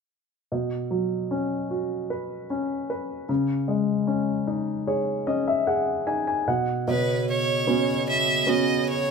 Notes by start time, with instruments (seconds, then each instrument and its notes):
0.52 grand piano B2
0.91 grand piano F#3
1.31 grand piano C#4
1.71 grand piano F#4
2.10 grand piano B4
2.50 grand piano C#4
2.90 grand piano B4
3.29 grand piano C#3
3.68 grand piano G#3
4.07 grand piano C#4
4.47 grand piano D#4
4.87 grand piano G#4 C#5
5.27 grand piano C#4 D#5
5.48 grand piano E5
5.67 grand piano G#4 F#5
6.07 grand piano D#4 G#5
6.27 grand piano G#5
6.48 grand piano B2 F#5
6.88 grand piano B2, woodwind section C#3 B3 F#4 C#5, violin B4
7.29 violin C#5
7.67 grand piano B3 C#4 F#4
8.09 violin E5
8.47 grand piano B3 C#4 F#4, violin D#5
8.89 violin C#5